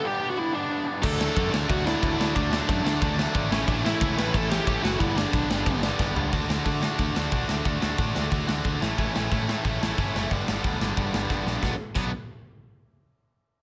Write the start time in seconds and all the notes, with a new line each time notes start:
0.03 G2 D3 G3 B3 D4 G4
0.20 G2 D3 G3 B3 D4
0.30 F#4
0.36 G2 D3 G3 B3 D4 E4
0.53 G2 D3 G3 B3 D4
0.70 G2 D3 G3 B3 D4
0.85 G2 D3 G3 B3 D4
1.01 D2 D3 F#3 A3 D4 A4, kick, crash
1.19 D3 F#3 A3 D4, snare
1.35 F#2 D3 F#3 A3 D4, kick, ride
1.52 D2 D3 F#3 A3 D4, snare
1.68 D2 D3 F#3 A3 D4 F#4, kick, ride
1.85 D3 F#3 A3 D4 E4, snare
2.02 D2 D3 F#3 A3 D4, kick, ride
2.17 D2 D3 F#3 A3 D4, snare
2.35 D2 D3 F#3 A3 D4, kick, ride
2.51 D3 F#3 A3 D4, snare
2.68 F#2 D3 F#3 A3 D4, kick, ride
2.83 D2 D3 F#3 A3 D4, snare
3.00 D2 D3 F#3 A3 D4, kick, ride
3.16 D3 F#3 A3 D4, snare
3.33 G#1 D3 F#3 A3 D4, kick, ride
3.49 A1 A2 E3 A3 C#4 E4, snare
3.66 A1 A2 E3 A3 C#4 D4 E4, kick, ride
3.82 A2 E3 A3 C#4 E4
3.86 snare
3.99 C#2 A2 E3 A3 C#4 E4, kick, ride
4.15 A1 A2 E3 A3 C#4 E4 B4, snare
4.32 A1 A2 E3 A3 C#4 E4 A4, kick, ride
4.49 A2 E3 A3 C#4 E4 G4, snare
4.65 A1 A2 E3 A3 C#4 E4, kick, ride
4.82 F#1 A2 E3 A3 C#4 E4 F#4, snare
4.99 G1 G2 D3 G3 B3 D4 E4, kick, ride
5.16 G2 D3 G3 B3 D4, snare
5.33 B1 G2 D3 G3 B3 D4, kick, ride
5.49 G1 G2 D3 G3 B3 D4, snare
5.66 G1 G2 D3 G3 B3 D4, kick, ride
5.83 G2 D3 G3 B3 D4, snare
5.98 G1 G2 D3 G3 B3 D4, kick, snare
6.14 C#2 G2 D3 G3 B3 D4, floor tom
6.31 D2 D3 A3 D4 F#4, kick, open hi-hat
6.47 D2 D3 A3 D4 F#4, snare
6.64 D3 A3 D4 F#4, kick, open hi-hat
6.82 D3 A3 D4 F#4, snare
6.98 D2 D3 A3 D4 F#4, kick, open hi-hat
7.15 D2 D3 A3 D4 F#4, snare
7.31 B1 D3 A3 D4 F#4, kick, open hi-hat
7.48 D2 D3 A3 D4 F#4, snare
7.65 D2 D3 A3 D4 F#4, kick, open hi-hat
7.82 D2 D3 A3 D4 F#4, snare
7.98 A2 D3 A3 D4 F#4, kick, open hi-hat
8.15 D2 D3 A3 D4 F#4, snare
8.31 D2 D3 A3 D4 F#4, kick, open hi-hat
8.47 D2 D3 A3 D4 F#4, snare
8.64 D2 D3 A3 D4 F#4, kick, open hi-hat
8.81 A1 A2 E3 A3 C#4 E4, snare
8.97 A1 A2 E3 A3 C#4 E4, kick, open hi-hat
9.14 A1 A2 E3 A3 C#4 E4, snare
9.30 A2 E3 A3 C#4 E4, kick, open hi-hat
9.48 A2 E3 A3 C#4 E4, snare
9.64 A1 A2 E3 A3 C#4 E4, kick, open hi-hat
9.80 A1 A2 E3 A3 C#4 E4, snare
9.97 G1 A2 E3 A3 C#4 E4, kick, open hi-hat
10.14 F#1 A2 E3 A3 C#4 E4, snare
10.30 G1 G2 D3 G3 B3 D4, kick, open hi-hat
10.48 G1 G2 D3 G3 B3 D4, snare
10.63 D2 G2 D3 G3 B3 D4, kick, open hi-hat
10.79 G1 G2 D3 G3 B3 D4, snare
10.96 G1 G2 D3 G3 B3 D4, kick, open hi-hat
11.12 G1 G2 D3 G3 B3 D4, snare
11.30 G1 G2 D3 G3 B3 D4, kick, snare
11.46 A#1 G2 D3 G3 B3 D4, snare
11.62 B1 B2 F#3 B3 D4, kick, snare
11.95 B1 B2 F#3 B3 D4, kick, crash